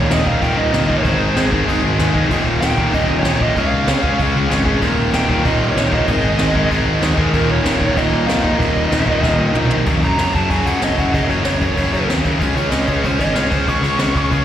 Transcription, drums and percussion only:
0.11 snare loud
0.11 crash medium
0.27 kick medium
0.42 kick loud
0.42 crash medium
0.74 snare loud
0.74 crash medium
0.90 kick medium
1.05 kick loud
1.05 crash medium
1.37 snare loud
1.37 crash medium
1.53 kick loud
1.68 kick loud
1.68 crash medium
2.00 snare loud
2.00 crash medium
2.15 kick loud
2.31 kick loud
2.31 crash medium
2.62 snare loud
2.62 crash medium
2.78 kick medium
2.94 kick loud
2.94 crash medium
3.25 snare loud
3.25 crash medium
3.41 kick medium
3.56 kick medium
3.56 crash medium
3.88 snare loud
3.88 crash medium
4.04 kick medium
4.20 kick loud
4.20 crash medium
4.51 snare loud
4.51 crash medium
4.66 kick loud
4.82 kick loud
4.82 crash medium
5.14 snare loud
5.14 crash medium
5.29 kick medium
5.45 kick loud
5.45 crash medium
5.77 snare loud
5.77 crash medium
5.92 kick medium
6.08 kick loud
6.08 crash medium
6.39 snare loud
6.39 crash medium
6.55 kick medium
6.71 kick loud
6.71 crash medium
7.02 snare loud
7.02 crash medium
7.18 kick loud
7.33 kick medium
7.33 crash medium
7.66 snare loud
7.66 crash medium
7.81 kick medium
7.97 kick loud
7.97 crash medium
8.29 snare loud
8.29 crash medium
8.44 kick medium
8.60 kick loud
8.60 crash medium
8.92 snare loud
8.92 crash medium
9.08 kick medium
9.23 kick loud
9.23 snare medium
9.55 mid tom medium
9.71 floor tom loud
9.86 kick loud
9.86 crash medium
10.02 crash medium
10.19 snare loud
10.19 crash medium
10.35 kick medium
10.35 crash medium
10.50 kick medium
10.50 crash medium
10.66 crash medium
10.82 snare loud
10.82 crash medium
10.98 kick medium
10.98 crash medium
11.14 kick loud
11.14 crash medium
11.30 crash medium
11.45 snare loud
11.45 crash medium
11.61 kick medium
11.61 crash medium
11.77 kick medium
11.77 crash medium
11.93 crash medium
12.10 snare loud
12.10 crash medium
12.25 kick medium
12.25 crash medium
12.41 kick loud
12.41 crash medium
12.57 crash medium
12.72 snare loud
12.72 crash medium
12.88 kick medium
12.88 crash medium
13.04 kick loud
13.04 crash medium
13.20 crash medium
13.36 snare loud
13.36 crash medium
13.51 kick medium
13.51 crash medium
13.68 kick loud
13.68 crash medium
13.84 crash medium
13.99 snare loud
13.99 crash medium
14.16 kick medium
14.16 crash medium
14.32 kick loud
14.32 crash medium

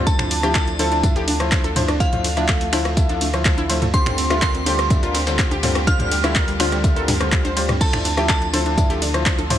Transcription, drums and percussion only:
0.07 kick loud
0.07 closed hi-hat medium
0.07 tambourine medium
0.07 high conga medium
0.19 finger snap medium
0.19 closed hi-hat soft
0.19 mid tom medium
0.31 open hi-hat loud
0.31 ride medium
0.31 tambourine medium
0.43 cross-stick medium
0.43 closed hi-hat soft
0.43 high conga medium
0.55 kick loud
0.55 snare loud
0.55 clap loud
0.55 closed hi-hat medium
0.55 tambourine medium
0.67 closed hi-hat soft
0.79 open hi-hat loud
0.79 ride medium
0.79 tambourine medium
0.79 high conga medium
0.92 closed hi-hat soft
1.03 kick loud
1.03 closed hi-hat medium
1.03 mid tom medium
1.03 tambourine medium
1.16 snare medium
1.16 closed hi-hat soft
1.28 open hi-hat loud
1.28 ride medium
1.28 tambourine medium
1.28 high conga medium
1.40 cross-stick medium
1.40 closed hi-hat soft
1.52 kick loud
1.52 snare loud
1.52 clap loud
1.52 closed hi-hat medium
1.52 tambourine medium
1.64 closed hi-hat soft
1.64 high conga medium
1.76 mid tom medium
1.76 open hi-hat loud
1.76 ride medium
1.76 tambourine medium
1.88 cross-stick medium
1.88 closed hi-hat soft
2.00 kick loud
2.00 closed hi-hat medium
2.00 tambourine medium
2.00 high conga medium
2.13 closed hi-hat soft
2.13 mid tom medium
2.24 open hi-hat loud
2.24 ride medium
2.24 tambourine medium
2.37 cross-stick soft
2.37 closed hi-hat soft
2.37 high conga medium
2.48 kick loud
2.48 snare loud
2.48 clap loud
2.48 closed hi-hat medium
2.48 tambourine medium
2.61 closed hi-hat soft
2.73 finger snap medium
2.73 open hi-hat loud
2.73 ride medium
2.73 tambourine medium
2.73 high conga medium
2.85 cross-stick medium
2.85 closed hi-hat soft
2.97 kick loud
2.97 closed hi-hat medium
2.97 tambourine medium
3.09 snare soft
3.09 closed hi-hat soft
3.21 open hi-hat loud
3.21 ride medium
3.21 tambourine medium
3.21 high conga medium
3.34 cross-stick medium
3.34 closed hi-hat soft
3.45 kick loud
3.45 snare loud
3.45 clap loud
3.45 closed hi-hat medium
3.45 tambourine medium
3.58 closed hi-hat soft
3.58 high conga medium
3.69 open hi-hat loud
3.69 ride medium
3.69 tambourine medium
3.82 closed hi-hat soft
3.82 mid tom medium
3.94 kick loud
3.94 closed hi-hat medium
3.94 tambourine medium
3.94 high conga loud
4.06 finger snap medium
4.06 closed hi-hat soft
4.06 mid tom medium
4.18 open hi-hat loud
4.18 ride medium
4.18 tambourine medium
4.30 cross-stick medium
4.30 closed hi-hat soft
4.30 high conga medium
4.42 kick loud
4.42 snare loud
4.42 clap loud
4.42 closed hi-hat medium
4.42 tambourine medium
4.55 closed hi-hat soft
4.66 open hi-hat loud
4.66 ride medium
4.66 tambourine medium
4.66 high conga loud
4.79 cross-stick medium
4.79 closed hi-hat soft
4.90 kick loud
4.90 closed hi-hat medium
4.90 mid tom medium
4.90 tambourine medium
5.03 closed hi-hat soft
5.14 snare loud
5.14 open hi-hat loud
5.14 ride medium
5.14 tambourine medium
5.14 high conga medium
5.27 cross-stick soft
5.27 snare loud
5.27 closed hi-hat soft
5.27 tambourine medium
5.39 kick loud
5.39 snare loud
5.39 clap loud
5.39 closed hi-hat medium
5.39 tambourine medium
5.51 closed hi-hat soft
5.51 high conga loud
5.63 mid tom medium
5.63 open hi-hat loud
5.63 ride medium
5.63 tambourine medium
5.75 cross-stick medium
5.75 closed hi-hat soft
5.87 kick loud
5.87 closed hi-hat medium
5.87 tambourine medium
5.87 high conga loud
5.99 closed hi-hat soft
5.99 mid tom medium
6.11 open hi-hat loud
6.11 ride medium
6.11 tambourine medium
6.24 cross-stick medium
6.24 closed hi-hat soft
6.24 high conga medium
6.35 kick loud
6.35 snare loud
6.35 clap loud
6.35 closed hi-hat medium
6.35 tambourine medium
6.48 closed hi-hat soft
6.60 finger snap medium
6.60 open hi-hat loud
6.60 ride medium
6.60 tambourine medium
6.60 high conga loud
6.72 cross-stick soft
6.72 snare soft
6.72 closed hi-hat soft
6.84 kick loud
6.84 closed hi-hat medium
6.84 tambourine medium
6.96 closed hi-hat soft
7.08 snare loud
7.08 mid tom medium
7.08 open hi-hat loud
7.08 ride medium
7.08 tambourine medium
7.08 high conga medium
7.20 cross-stick medium
7.20 closed hi-hat soft
7.32 kick loud
7.32 clap loud
7.32 closed hi-hat medium
7.32 tambourine medium
7.45 snare soft
7.45 closed hi-hat soft
7.45 high conga loud
7.57 open hi-hat loud
7.57 ride medium
7.57 tambourine medium
7.69 cross-stick medium
7.69 closed hi-hat soft
7.69 mid tom medium
7.81 kick loud
7.81 closed hi-hat medium
7.81 crash medium
7.81 tambourine medium
7.81 high conga loud
7.93 finger snap medium
7.93 closed hi-hat soft
7.93 mid tom medium
8.05 open hi-hat loud
8.05 ride medium
8.05 tambourine medium
8.17 cross-stick medium
8.17 closed hi-hat soft
8.17 high conga medium
8.29 kick loud
8.29 snare loud
8.29 clap loud
8.29 closed hi-hat medium
8.29 tambourine medium
8.42 closed hi-hat soft
8.53 open hi-hat loud
8.53 ride medium
8.53 tambourine medium
8.53 high conga loud
8.66 closed hi-hat soft
8.78 kick loud
8.78 closed hi-hat medium
8.78 mid tom medium
8.78 tambourine medium
8.90 snare medium
8.90 closed hi-hat soft
9.02 open hi-hat loud
9.02 ride medium
9.02 tambourine medium
9.02 high conga medium
9.14 cross-stick medium
9.14 closed hi-hat soft
9.26 kick loud
9.26 snare loud
9.26 clap loud
9.26 closed hi-hat medium
9.26 tambourine medium
9.38 closed hi-hat soft
9.38 high conga loud
9.50 mid tom medium
9.50 open hi-hat loud
9.50 ride medium
9.50 tambourine medium

